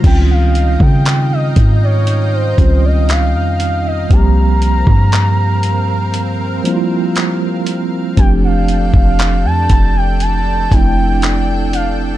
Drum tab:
CC |x---------------|----------------|----------------|
HH |x-x-x-x-x-x-x-x-|x-x-x-x-x-x-x-x-|x-x-x-x-x-x-x-x-|
CP |----x-------x---|----x-------x---|----x-------x---|
BD |o--o--o---o-----|o--o------------|o--o--o---o-----|